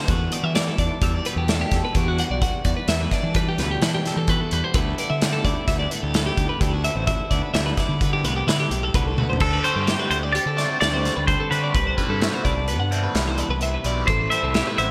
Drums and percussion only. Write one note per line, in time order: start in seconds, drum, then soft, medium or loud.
0.08 kick loud
0.08 closed hi-hat medium
0.32 closed hi-hat medium
0.55 snare loud
0.55 closed hi-hat medium
0.78 kick medium
0.78 closed hi-hat medium
1.01 kick loud
1.01 closed hi-hat medium
1.25 closed hi-hat medium
1.48 snare loud
1.48 closed hi-hat medium
1.71 kick medium
1.71 snare soft
1.71 closed hi-hat medium
1.95 kick loud
1.95 closed hi-hat medium
2.18 closed hi-hat medium
2.42 kick loud
2.42 closed hi-hat loud
2.65 kick medium
2.65 closed hi-hat medium
2.88 snare loud
2.88 closed hi-hat medium
3.11 kick medium
3.11 snare soft
3.11 closed hi-hat medium
3.34 kick loud
3.34 closed hi-hat medium
3.58 snare soft
3.58 closed hi-hat medium
3.82 snare loud
3.82 closed hi-hat medium
4.05 snare soft
4.05 closed hi-hat medium
4.28 kick loud
4.28 closed hi-hat medium
4.51 closed hi-hat medium
4.74 kick loud
4.74 closed hi-hat medium
4.98 closed hi-hat medium
5.22 snare loud
5.22 closed hi-hat medium
5.45 kick medium
5.45 closed hi-hat medium
5.68 kick loud
5.68 snare soft
5.68 closed hi-hat medium
5.91 closed hi-hat medium
6.14 snare loud
6.14 closed hi-hat medium
6.38 kick medium
6.38 closed hi-hat medium
6.61 kick loud
6.61 closed hi-hat medium
6.84 closed hi-hat medium
7.07 kick loud
7.07 closed hi-hat medium
7.31 kick medium
7.31 closed hi-hat medium
7.54 snare loud
7.54 closed hi-hat medium
7.77 kick medium
7.77 snare soft
7.77 closed hi-hat medium
8.01 kick loud
8.01 closed hi-hat medium
8.24 closed hi-hat medium
8.48 snare loud
8.48 closed hi-hat medium
8.71 closed hi-hat medium
8.94 kick loud
8.94 closed hi-hat medium
9.18 high tom medium
9.33 floor tom medium
9.40 kick loud
9.40 crash medium
9.64 closed hi-hat medium
9.87 snare loud
9.87 closed hi-hat medium
10.11 closed hi-hat medium
10.35 closed hi-hat medium
10.58 snare soft
10.58 closed hi-hat medium
10.81 snare loud
10.81 closed hi-hat medium
11.05 snare soft
11.05 closed hi-hat medium
11.28 kick loud
11.28 closed hi-hat medium
11.52 closed hi-hat medium
11.75 kick loud
11.75 closed hi-hat medium
11.98 kick medium
11.98 closed hi-hat medium
12.22 snare loud
12.22 closed hi-hat medium
12.45 kick medium
12.45 closed hi-hat medium
12.68 closed hi-hat medium
12.92 closed hi-hat medium
13.15 snare loud
13.15 closed hi-hat medium
13.38 closed hi-hat medium
13.61 closed hi-hat medium
13.84 closed hi-hat medium
14.08 kick loud
14.08 closed hi-hat medium
14.31 closed hi-hat medium
14.54 snare loud
14.54 closed hi-hat medium
14.78 closed hi-hat medium